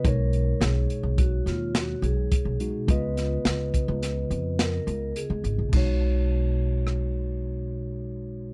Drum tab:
CC |----------|----------|x---------|
HH |xxxxxxxxxx|xxxxxxxxxx|----------|
SD |--o--oo---|-oo-o-o---|----r-----|
BD |o---o---o-|o--o------|o---------|